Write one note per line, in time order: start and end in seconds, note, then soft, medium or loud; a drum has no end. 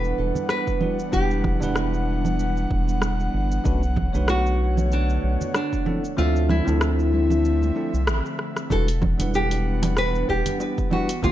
0.00 0.13 E1 medium
0.00 3.62 E3 medium
0.00 0.77 G3 medium
0.00 3.62 G3 medium
0.00 5.83 B3 medium
0.00 0.78 D4 medium
0.00 3.62 D4 medium
0.00 0.78 E4 medium
0.00 0.46 B4 loud
0.00 0.79 B4 medium
0.00 0.79 F#5 medium
0.00 5.83 F#5 medium
0.04 cabasa soft
0.18 0.32 E1 medium
0.35 low conga medium
0.35 cabasa medium
0.49 1.09 B4 medium
0.49 cross-stick medium
0.49 cabasa medium
0.67 kick loud
0.67 cabasa soft
0.80 0.97 G3 medium
0.80 0.97 D4 medium
0.80 0.97 E4 medium
0.80 0.97 F#4 medium
0.80 0.98 B4 medium
0.80 low conga medium
0.99 cabasa medium
1.12 1.56 E1 medium
1.12 1.57 G3 medium
1.12 1.58 D4 medium
1.12 1.58 E4 medium
1.12 2.98 G4 medium
1.12 1.58 B4 medium
1.12 1.58 F#5 medium
1.12 kick loud
1.12 low conga medium
1.12 cabasa medium
1.31 cabasa soft
1.44 kick loud
1.44 cross-stick soft
1.44 low conga medium
1.60 2.66 E1 medium
1.60 3.61 G3 medium
1.60 3.61 D4 medium
1.60 3.62 E4 medium
1.60 3.63 B4 loud
1.60 3.62 F#5 medium
1.60 low conga medium
1.60 cabasa medium
1.76 cross-stick medium
1.76 cabasa medium
1.94 cabasa soft
2.25 low conga medium
2.25 cabasa medium
2.39 cabasa medium
2.57 cabasa soft
2.71 3.29 E1 loud
2.71 kick loud
2.88 cabasa medium
3.02 cross-stick medium
3.02 cabasa medium
3.20 cabasa soft
3.34 3.59 G1 loud
3.52 cabasa medium
3.64 4.09 B1 medium
3.64 5.84 D3 medium
3.64 3.81 A3 medium
3.64 5.84 A3 medium
3.64 3.81 C#4 medium
3.64 3.81 D4 medium
3.64 3.81 F#4 medium
3.64 3.82 B4 loud
3.64 5.84 C#5 medium
3.64 kick loud
3.64 low conga medium
3.64 cabasa medium
3.83 cabasa soft
3.96 kick loud
3.96 low conga medium
4.12 5.18 B1 medium
4.12 5.82 A3 medium
4.12 5.83 D4 medium
4.12 5.83 F#4 medium
4.12 5.84 B4 medium
4.12 5.82 C#5 medium
4.12 low conga medium
4.12 cabasa medium
4.28 4.88 F#4 medium
4.28 cross-stick loud
4.28 cabasa medium
4.46 cabasa soft
4.77 low conga medium
4.77 cabasa medium
4.92 5.55 D4 loud
4.92 cabasa medium
5.09 cabasa soft
5.23 5.37 B1 medium
5.41 low conga medium
5.41 cabasa medium
5.54 6.18 D4 medium
5.54 cross-stick loud
5.54 cabasa medium
5.73 kick medium
5.73 cabasa soft
5.85 8.68 D3 medium
5.85 6.02 F3 medium
5.85 8.68 F3 medium
5.85 8.68 A3 medium
5.85 6.02 C4 medium
5.85 8.68 C4 medium
5.85 6.02 D4 medium
5.85 6.03 E4 medium
5.85 6.03 A4 medium
5.85 8.68 E5 medium
5.85 low conga medium
6.04 cabasa medium
6.17 6.61 D2 medium
6.17 6.62 F3 loud
6.17 6.63 C4 medium
6.17 6.63 D4 medium
6.17 6.50 F4 loud
6.17 6.63 A4 loud
6.17 6.63 E5 medium
6.17 low conga medium
6.17 cabasa medium
6.36 cabasa soft
6.49 8.36 E4 medium
6.49 cross-stick soft
6.49 high conga medium
6.49 low conga medium
6.65 7.71 D2 medium
6.65 7.72 F3 loud
6.65 7.73 C4 medium
6.65 7.73 D4 medium
6.65 7.73 E4 medium
6.65 7.74 A4 loud
6.65 low conga medium
6.65 cabasa medium
6.81 cross-stick loud
6.81 cabasa medium
6.99 cabasa soft
7.13 high conga medium
7.30 low conga medium
7.30 cabasa medium
7.45 cabasa medium
7.62 high conga soft
7.62 cabasa soft
7.75 7.91 F3 medium
7.75 7.91 C4 medium
7.75 7.92 D4 medium
7.75 7.92 E4 medium
7.75 7.92 A4 medium
7.94 8.09 C2 medium
7.94 cabasa medium
8.07 8.21 A1 medium
8.07 cross-stick loud
8.07 cabasa medium
8.26 cabasa soft
8.39 cross-stick medium
8.57 cross-stick medium
8.57 cabasa medium
8.70 9.14 E1 loud
8.70 11.21 E3 medium
8.70 8.86 G3 medium
8.70 11.21 B3 medium
8.70 8.86 D4 medium
8.70 11.21 D4 medium
8.70 8.87 E4 medium
8.70 8.87 F#4 medium
8.70 9.35 A4 loud
8.70 8.87 B4 loud
8.70 11.21 F#5 medium
8.70 kick loud
8.70 high bongo medium
8.70 low conga medium
8.70 cabasa medium
8.88 open hi-hat soft
8.88 cabasa soft
9.02 kick loud
9.02 high bongo medium
9.02 low conga medium
9.18 10.24 E1 medium
9.18 10.88 G3 medium
9.18 10.88 D4 medium
9.18 10.88 E4 medium
9.18 10.89 B4 medium
9.18 10.89 F#5 medium
9.18 open hi-hat medium
9.18 low conga medium
9.18 cabasa medium
9.34 9.98 G4 medium
9.34 cabasa medium
9.51 open hi-hat soft
9.51 high bongo soft
9.51 cabasa soft
9.83 open hi-hat medium
9.83 high bongo medium
9.83 low conga medium
9.83 cabasa medium
9.97 10.29 B4 loud
9.97 cross-stick medium
9.97 cabasa medium
10.15 cabasa soft
10.29 10.43 E1 medium
10.29 10.92 G4 loud
10.29 kick medium
10.29 high bongo medium
10.46 open hi-hat medium
10.46 low conga medium
10.46 cabasa medium
10.60 high bongo medium
10.60 cabasa medium
10.78 kick loud
10.78 cabasa soft
10.91 11.07 G3 medium
10.91 11.07 D4 medium
10.91 11.08 E4 medium
10.91 11.08 F#4 medium
10.91 11.24 F#4 medium
10.91 11.08 B4 medium
10.91 low conga medium
11.09 open hi-hat medium
11.09 high bongo soft
11.09 cabasa medium
11.22 11.32 G1 loud
11.22 11.32 D3 medium
11.22 11.32 F3 loud
11.22 11.32 A3 medium
11.22 11.32 A#3 medium
11.22 11.32 D4 medium
11.22 11.32 F4 medium
11.22 11.32 F4 loud
11.22 11.32 G4 loud
11.22 kick loud
11.22 low conga medium
11.22 cabasa medium